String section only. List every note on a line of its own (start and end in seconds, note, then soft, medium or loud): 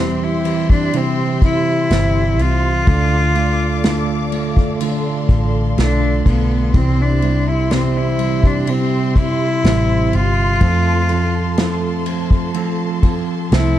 0.00 2.83 G4 medium
0.00 2.83 E5 medium
0.00 2.83 C6 medium
2.87 6.71 A4 medium
2.87 6.70 D5 medium
2.87 6.71 F5 medium
2.87 4.79 D6 medium
4.80 13.79 C6 medium
6.74 10.57 G4 medium
6.74 10.58 E5 medium
10.60 13.79 A4 medium
10.60 13.79 A5 medium